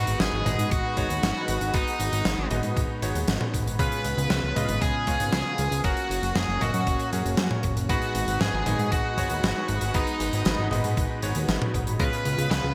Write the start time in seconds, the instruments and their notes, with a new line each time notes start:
Already playing: electric grand piano G#3 B3 D#4 F#4 B4, analog synth pad G#3 D#4 F#4 B4, lead electric guitar F#4
0.07 analog synth bass G#1, closed hi-hat
0.20 analog synth bass G#1, lead electric guitar G#4, snare, closed hi-hat
0.33 analog synth bass G#1
0.46 analog synth bass G#1, electric grand piano G#3 B3 D#4 F#4 D#5, closed hi-hat, mid tom
0.59 analog synth bass G#2, closed hi-hat
0.71 analog synth bass G#1, lead electric guitar F#4, kick, closed hi-hat
0.97 analog synth bass G#1, electric grand piano G#3 B3 D#4 F#4 C#5, kick, closed hi-hat
1.10 analog synth bass D#2, closed hi-hat
1.23 analog synth bass G#1, snare, closed hi-hat
1.48 analog synth bass G#1, closed hi-hat
1.61 analog synth bass G#1, closed hi-hat
1.74 analog synth bass G#1, electric grand piano G#3 B3 D#4 F#4 B4, lead electric guitar D#4, kick, closed hi-hat
1.88 closed hi-hat
2.00 analog synth bass G#1, closed hi-hat
2.12 analog synth bass G#1, closed hi-hat
2.25 analog synth bass G#1, snare, closed hi-hat
2.38 analog synth bass G#1
2.51 analog synth bass G#1, electric grand piano G#3 B3 D#4 F#4 D#5, closed hi-hat, mid tom
2.63 analog synth bass G#2, closed hi-hat
2.77 analog synth bass G#1, kick, closed hi-hat
3.02 analog synth bass G#1, electric grand piano G#3 B3 D#4 F#4 C#5, closed hi-hat
3.15 analog synth bass D#2, closed hi-hat
3.28 analog synth bass G#1, snare, closed hi-hat
3.41 mid tom
3.54 analog synth bass G#1, kick, closed hi-hat
3.66 analog synth bass G#1, closed hi-hat
3.79 analog synth bass C#2, analog synth pad C#3 B3 F4, electric grand piano G#3 B3 C#4 F4 B4, lead electric guitar B4, kick, closed hi-hat
3.92 closed hi-hat
4.04 analog synth bass C#2, closed hi-hat
4.18 analog synth bass C#2, closed hi-hat
4.30 analog synth bass C#2, lead electric guitar B4, snare, closed hi-hat
4.43 analog synth bass C#2
4.56 analog synth bass C#2, electric grand piano G#3 B3 C#4 F4 D#5, closed hi-hat, mid tom
4.69 analog synth bass G#1, closed hi-hat
4.82 analog synth bass C#2, lead electric guitar G#4, kick, closed hi-hat
5.07 analog synth bass C#2, electric grand piano G#3 B3 C#4 F4 C#5, kick, closed hi-hat
5.20 analog synth bass G#1, closed hi-hat
5.33 analog synth bass C#2, lead electric guitar G#4, snare, closed hi-hat
5.58 analog synth bass C#2, closed hi-hat
5.71 analog synth bass C#2, closed hi-hat
5.84 analog synth bass F#1, analog synth pad A#3 C#4 F#4, electric grand piano C#4 F#4 A#4, lead electric guitar F#4, kick, closed hi-hat
5.97 closed hi-hat
6.10 analog synth bass F#1, closed hi-hat
6.23 analog synth bass F#1, closed hi-hat
6.36 analog synth bass F#1, lead electric guitar G#4, snare, closed hi-hat
6.48 analog synth bass F#1
6.61 analog synth bass F#1, electric grand piano C#4 F#4 D#5, lead electric guitar F#4, closed hi-hat, mid tom
6.74 analog synth bass F#2, closed hi-hat
6.87 analog synth bass F#1, kick, closed hi-hat
6.99 closed hi-hat
7.13 analog synth bass F#2, electric grand piano C#4 F#4 G#4, closed hi-hat
7.25 analog synth bass F#1, closed hi-hat
7.37 analog synth bass F#2, snare, closed hi-hat
7.51 electric grand piano C#4 F#4 C#5, mid tom
7.63 analog synth bass F#1, kick, closed hi-hat
7.77 analog synth bass F#1, closed hi-hat
7.89 analog synth bass G#1, analog synth pad G#3 D#4 F#4 B4, electric grand piano G#3 B3 D#4 F#4 B4, lead electric guitar F#4, kick, closed hi-hat
8.02 closed hi-hat
8.15 analog synth bass G#1, closed hi-hat
8.28 analog synth bass G#1, closed hi-hat
8.41 analog synth bass G#1, lead electric guitar G#4, snare, closed hi-hat
8.54 analog synth bass G#1
8.66 analog synth bass G#1, electric grand piano G#3 B3 D#4 F#4 D#5, closed hi-hat, mid tom
8.79 analog synth bass G#2, closed hi-hat
8.92 analog synth bass G#1, lead electric guitar F#4, kick, closed hi-hat
9.18 analog synth bass G#1, electric grand piano G#3 B3 D#4 F#4 C#5, kick, closed hi-hat
9.30 analog synth bass D#2, closed hi-hat
9.43 analog synth bass G#1, snare, closed hi-hat
9.68 analog synth bass G#1, closed hi-hat
9.81 analog synth bass G#1, closed hi-hat
9.94 analog synth bass G#1, electric grand piano G#3 B3 D#4 F#4 B4, lead electric guitar D#4, kick, closed hi-hat
10.07 closed hi-hat
10.20 analog synth bass G#1, closed hi-hat
10.33 analog synth bass G#1, closed hi-hat
10.45 analog synth bass G#1, snare, closed hi-hat
10.59 analog synth bass G#1
10.71 analog synth bass G#1, electric grand piano G#3 B3 D#4 F#4 D#5, closed hi-hat, mid tom
10.84 analog synth bass G#2, closed hi-hat
10.97 analog synth bass G#1, kick, closed hi-hat
11.22 analog synth bass G#1, electric grand piano G#3 B3 D#4 F#4 C#5, closed hi-hat
11.35 analog synth bass D#2, closed hi-hat
11.48 analog synth bass G#1, snare, closed hi-hat
11.62 mid tom
11.74 analog synth bass G#1, kick, closed hi-hat
11.87 analog synth bass G#1, closed hi-hat
12.00 analog synth bass C#2, analog synth pad C#3 G#3 B3 F4, electric grand piano G#3 B3 C#4 F4 B4, lead electric guitar B4, kick, closed hi-hat
12.13 closed hi-hat
12.25 analog synth bass C#2, closed hi-hat
12.38 analog synth bass C#2, closed hi-hat
12.51 analog synth bass C#2, lead electric guitar B4, snare, closed hi-hat
12.64 analog synth bass C#2